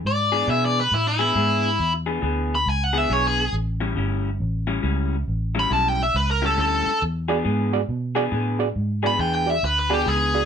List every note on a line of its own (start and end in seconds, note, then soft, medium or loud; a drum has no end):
0.04 0.47 G#2 medium
0.04 0.48 D5 medium
0.32 0.46 E3 medium
0.32 0.46 B3 medium
0.32 0.47 D4 medium
0.32 0.47 G#4 medium
0.47 0.90 B2 medium
0.47 0.80 E3 medium
0.47 0.81 B3 medium
0.47 0.81 D4 medium
0.47 0.81 G#4 medium
0.47 0.63 E5 medium
0.65 0.78 D5 medium
0.80 0.93 B4 medium
0.92 1.34 A2 medium
0.92 1.07 E4 medium
1.08 1.92 E4 medium
1.19 1.33 E3 medium
1.19 1.34 B3 medium
1.19 1.34 D4 medium
1.19 1.35 G#4 medium
1.34 1.78 G#2 medium
1.34 1.68 E3 medium
1.34 1.68 B3 medium
1.34 1.68 D4 medium
1.34 1.68 G#4 medium
1.79 2.21 E2 medium
2.06 2.20 E3 medium
2.06 2.21 B3 medium
2.06 2.21 D4 medium
2.06 2.22 G#4 medium
2.21 2.65 D2 medium
2.21 2.55 E3 medium
2.21 2.55 B3 medium
2.21 2.55 D4 medium
2.21 2.55 G#4 medium
2.55 2.67 B5 medium
2.66 3.08 C#2 medium
2.66 2.84 G#5 medium
2.84 2.98 F#5 medium
2.93 3.08 E3 medium
2.93 3.08 B3 medium
2.93 3.09 D4 medium
2.93 3.09 G#4 medium
2.98 3.13 E5 medium
3.09 3.52 B1 medium
3.09 3.42 E3 medium
3.09 3.42 B3 medium
3.09 3.43 D4 medium
3.09 3.43 G#4 medium
3.09 3.25 C#5 medium
3.27 3.54 G#4 medium
3.53 3.95 A1 medium
3.80 3.94 A2 medium
3.80 3.95 G3 medium
3.80 3.95 C#4 medium
3.80 3.96 E4 medium
3.96 4.38 G1 medium
3.96 4.29 A2 medium
3.96 4.29 G3 medium
3.96 4.29 C#4 medium
3.96 4.30 E4 medium
4.40 4.82 A1 medium
4.67 4.81 A2 medium
4.67 4.81 G3 medium
4.67 4.82 C#4 medium
4.67 4.82 E4 medium
4.82 5.26 C#2 medium
4.82 5.16 A2 medium
4.82 5.16 G3 medium
4.82 5.16 C#4 medium
4.82 5.16 E4 medium
5.28 5.70 A1 medium
5.55 5.68 A2 medium
5.55 5.69 G3 medium
5.55 5.69 C#4 medium
5.55 5.70 E4 medium
5.59 5.72 B5 medium
5.70 6.13 B1 medium
5.70 6.03 A2 medium
5.70 6.03 G3 medium
5.70 6.03 C#4 medium
5.70 6.03 E4 medium
5.70 5.88 A5 medium
5.88 6.01 G5 medium
6.03 6.15 E5 medium
6.14 6.57 C#2 medium
6.14 6.29 B4 medium
6.31 6.44 A#4 medium
6.42 6.56 A2 medium
6.42 6.56 G3 medium
6.42 6.56 C#4 medium
6.42 6.57 E4 medium
6.42 6.59 A4 medium
6.57 6.84 D2 medium
6.57 6.90 A2 medium
6.57 6.90 G3 medium
6.57 6.90 C#4 medium
6.57 6.91 E4 medium
6.57 7.01 A4 medium
6.86 muted fingered electric bass stroke soft
7.02 7.44 E2 medium
7.28 7.43 E3 medium
7.28 7.43 B3 medium
7.28 7.43 D4 medium
7.28 7.37 F#4 medium
7.28 7.44 G#4 medium
7.28 7.37 G#4 medium
7.28 7.37 D5 medium
7.44 7.87 G#2 medium
7.44 7.77 E3 medium
7.44 7.77 B3 medium
7.44 7.77 D4 medium
7.44 7.77 G#4 medium
7.73 7.81 F#4 medium
7.73 7.81 G#4 medium
7.73 7.81 D5 medium
7.89 8.31 B2 medium
8.15 8.30 E3 medium
8.15 8.30 B3 medium
8.15 8.30 D4 medium
8.15 8.24 F#4 medium
8.15 8.31 G#4 medium
8.15 8.24 G#4 medium
8.15 8.24 D5 loud
8.31 8.74 A2 medium
8.31 8.64 E3 medium
8.31 8.64 B3 medium
8.31 8.64 D4 medium
8.31 8.64 G#4 medium
8.59 8.67 F#4 medium
8.59 8.68 G#4 medium
8.59 8.68 D5 medium
8.76 9.18 G#2 medium
9.03 9.16 E3 medium
9.03 9.17 B3 medium
9.03 9.17 D4 medium
9.03 9.11 F#4 medium
9.03 9.18 G#4 medium
9.03 9.11 G#4 medium
9.03 9.11 D5 medium
9.07 9.20 B5 medium
9.18 9.61 E2 medium
9.18 9.51 E3 medium
9.18 9.51 B3 medium
9.18 9.51 D4 medium
9.18 9.52 G#4 medium
9.18 9.34 G5 medium
9.35 9.50 G5 medium
9.46 9.54 F#4 medium
9.46 9.54 G#4 medium
9.46 9.55 D5 medium
9.46 9.63 E5 medium
9.63 10.05 D2 medium
9.63 9.78 B4 medium
9.79 9.92 B4 medium
9.90 10.04 E3 medium
9.90 10.05 B3 medium
9.90 10.05 D4 medium
9.90 9.98 F#4 medium
9.90 10.08 G4 medium
9.90 10.06 G#4 medium
9.90 9.98 G#4 medium
9.90 9.98 D5 medium
10.06 10.45 C#2 medium
10.06 10.38 E3 medium
10.06 10.39 B3 medium
10.06 10.39 D4 medium
10.06 10.39 G#4 medium
10.06 10.45 G#4 medium
10.34 10.42 F#4 medium
10.34 10.42 G#4 medium
10.34 10.42 D5 medium